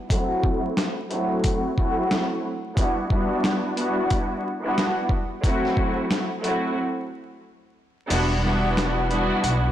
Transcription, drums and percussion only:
0.10 kick loud
0.10 closed hi-hat loud
0.44 kick loud
0.77 snare loud
0.77 snare medium
0.77 closed hi-hat medium
1.10 closed hi-hat soft
1.44 kick loud
1.44 closed hi-hat medium
1.78 kick medium
2.11 snare loud
2.11 snare medium
2.11 closed hi-hat medium
2.77 kick loud
2.77 closed hi-hat loud
3.10 kick medium
3.44 snare loud
3.44 snare medium
3.44 closed hi-hat medium
3.77 closed hi-hat soft
4.10 kick medium
4.10 closed hi-hat medium
4.78 snare loud
4.78 snare medium
4.78 closed hi-hat medium
5.09 kick medium
5.44 kick loud
5.44 closed hi-hat loud
5.65 snare soft
5.77 kick loud
6.11 snare loud
6.11 snare medium
6.11 closed hi-hat medium
6.44 closed hi-hat soft
8.10 closed hi-hat loud
8.10 crash medium
8.77 snare loud
8.77 snare medium
8.77 closed hi-hat medium
9.11 closed hi-hat soft
9.44 closed hi-hat medium

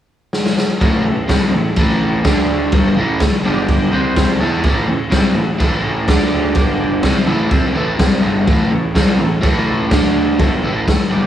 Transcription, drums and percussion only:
0.33 snare medium
0.46 snare medium
0.58 snare medium
0.81 kick loud
0.81 crash medium
1.29 kick loud
1.29 snare loud
1.29 crash medium
1.76 kick loud
1.76 crash medium
2.25 kick loud
2.25 snare loud
2.25 crash medium
2.72 kick loud
2.72 crash medium
3.20 kick loud
3.20 snare loud
3.20 crash medium
3.69 kick loud
3.69 crash medium
4.16 kick loud
4.16 snare loud
4.16 crash medium
4.64 kick loud
4.64 crash medium
5.12 kick loud
5.12 snare loud
5.12 crash medium
5.60 kick loud
5.60 crash medium
6.08 kick loud
6.08 snare loud
6.08 crash medium
6.55 kick loud
6.55 crash medium
7.03 kick loud
7.03 snare loud
7.03 crash medium
7.51 kick loud
7.51 crash medium
7.99 kick loud
7.99 snare loud
7.99 crash medium
8.48 kick loud
8.48 crash medium
8.95 kick loud
8.95 snare loud
8.95 crash medium
9.43 kick loud
9.43 crash medium
9.91 kick loud
9.91 snare loud
9.91 crash medium
10.39 kick loud
10.39 crash medium
10.88 kick loud
10.88 snare loud
10.88 crash medium

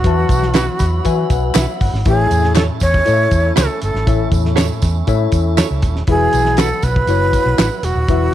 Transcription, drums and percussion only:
0.04 kick medium
0.04 closed hi-hat medium
0.29 kick medium
0.29 closed hi-hat medium
0.29 tambourine medium
0.42 snare soft
0.54 snare loud
0.54 clap medium
0.54 closed hi-hat loud
0.54 tambourine medium
0.79 kick medium
0.79 snare soft
0.79 closed hi-hat medium
0.79 tambourine medium
1.05 kick medium
1.05 closed hi-hat medium
1.05 tambourine medium
1.30 kick medium
1.30 closed hi-hat medium
1.30 tambourine soft
1.55 snare medium
1.55 clap loud
1.55 closed hi-hat medium
1.55 tambourine loud
1.80 kick medium
1.80 open hi-hat medium
1.80 tambourine soft
1.94 snare soft
2.05 kick loud
2.05 closed hi-hat medium
2.05 tambourine soft
2.31 closed hi-hat medium
2.31 tambourine medium
2.44 snare soft
2.55 snare loud
2.55 clap medium
2.55 closed hi-hat loud
2.55 tambourine medium
2.80 kick medium
2.80 closed hi-hat medium
2.80 tambourine medium
2.94 kick medium
3.06 closed hi-hat medium
3.06 tambourine soft
3.31 kick medium
3.31 closed hi-hat medium
3.31 tambourine soft
3.57 snare medium
3.57 clap loud
3.57 closed hi-hat medium
3.57 tambourine loud
3.82 closed hi-hat medium
3.82 tambourine soft
3.96 snare soft
4.07 kick loud
4.07 closed hi-hat medium
4.07 tambourine soft
4.32 kick medium
4.32 closed hi-hat medium
4.32 tambourine soft
4.45 snare soft
4.57 snare loud
4.57 clap medium
4.57 closed hi-hat loud
4.57 tambourine medium
4.82 kick medium
4.82 snare soft
4.82 closed hi-hat medium
4.82 tambourine medium
5.07 kick medium
5.07 closed hi-hat medium
5.07 tambourine soft
5.32 kick medium
5.32 closed hi-hat medium
5.32 tambourine soft
5.58 snare medium
5.58 clap medium
5.58 closed hi-hat medium
5.58 tambourine loud
5.82 kick loud
5.82 closed hi-hat medium
5.82 tambourine soft
5.96 snare soft
6.07 kick loud
6.07 closed hi-hat medium
6.33 closed hi-hat medium
6.33 tambourine soft
6.45 snare soft
6.57 snare loud
6.57 clap medium
6.57 closed hi-hat medium
6.57 tambourine medium
6.82 kick medium
6.82 snare soft
6.82 closed hi-hat medium
6.82 tambourine medium
6.96 kick medium
7.07 closed hi-hat medium
7.07 tambourine soft
7.33 kick medium
7.33 closed hi-hat medium
7.33 tambourine soft
7.58 snare loud
7.58 clap loud
7.58 closed hi-hat medium
7.58 tambourine loud
7.83 closed hi-hat medium
7.83 tambourine soft
8.08 kick loud
8.08 closed hi-hat medium

